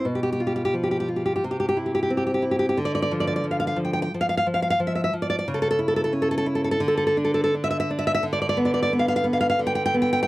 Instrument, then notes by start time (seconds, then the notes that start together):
nylon-string guitar
0.05 B2
0.15 G4
0.23 G4
0.33 G4
0.40 F4
0.47 G4
0.56 G4
0.65 G4
0.74 F3
0.83 G4
0.91 G4
1.00 G4
1.08 F4
1.16 G4
1.26 G4
1.36 G4
1.44 C3
1.51 G4
1.60 G4
1.69 G4
1.77 E4
1.86 G4
1.95 G4
2.03 G4
2.10 C4
2.17 G4
2.27 G4
2.34 G4
2.42 E4
2.51 G4
2.59 G4
2.69 G4
2.77 D3
2.85 D5
2.95 D5
3.02 D5
3.11 F3
3.20 D5
3.27 D5
3.36 D5
3.44 F3
3.51 F5
3.60 F5
3.67 F5
3.76 F3
3.85 G5
3.93 G5
4.02 G5
4.14 F3
4.21 F5
4.29 F5
4.37 F5
4.47 F3
4.54 F5
4.62 F5
4.70 F5
4.80 F3
4.87 E5
4.95 E5
5.04 E5
5.13 F3
5.22 D5
5.30 D5
5.39 D5
5.48 C#3
5.54 A4
5.62 A4
5.71 A4
5.79 E4
5.88 A4
5.96 A4
6.04 A4
6.13 C#4
6.22 A4
6.31 A4
6.38 A4
6.46 E4
6.55 A4
6.64 A4
6.71 A4
6.80 D3
6.88 A4
6.97 A4
7.07 A4
7.17 D4
7.25 A4
7.34 A4
7.44 A4
7.54 D4
7.64 E5
7.71 E5
7.80 E5
7.91 D4
7.99 E5
8.07 E5
8.15 E5
8.23 D3
8.33 D5
8.42 D5
8.49 D5
8.57 B3
8.65 D5
8.74 D5
8.83 D5
8.93 B3
8.99 F5
9.08 F5
9.16 F5
9.24 B3
9.33 F5
9.41 F5
9.50 F5
9.59 D3
9.67 G5
9.75 G5
9.86 G5
9.94 B3
10.02 G5
10.13 G5
10.23 G5